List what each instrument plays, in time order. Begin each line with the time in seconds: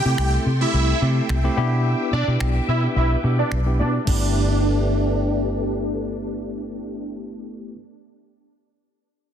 Already playing: supersaw synth G4 G5, string machine A4 E5 G5 C6
0.05 fingered electric bass C3, tine electric piano A3 C4 E4 G4
0.18 fingered electric bass C2, supersaw synth G4 G5, finger snap
0.46 fingered electric bass C3
0.61 tine electric piano A3 C4 E4 G4, supersaw synth E4 E5
0.74 fingered electric bass C2
1.01 fingered electric bass C3, tine electric piano A3 C4 E4 G4
1.29 fingered electric bass C2, finger snap
1.44 tine electric piano A3 C4 E4 G4
1.57 fingered electric bass B2, tine electric piano B3 D4 E4 G4, string machine B4 D6
2.13 fingered electric bass B2, supersaw synth D4 D5
2.27 fingered electric bass B2, tine electric piano B3 D4 E4 G4
2.40 fingered electric bass B1, finger snap
2.68 fingered electric bass B2, supersaw synth E4 E5
2.83 tine electric piano B3 D4 E4 G4
2.96 fingered electric bass B1, supersaw synth E4 E5
3.24 fingered electric bass B2, tine electric piano B3 D4 E4 G4
3.39 supersaw synth D4 D5
3.52 fingered electric bass B1, finger snap
3.66 tine electric piano B3 D4 E4 G4
3.79 fingered electric bass B2, supersaw synth D4 D5
4.05 fingered electric bass G1, tine electric piano A3 B3 E4 G4, supersaw synth D4, string machine D4 G4 A4 B4 E5, kick, crash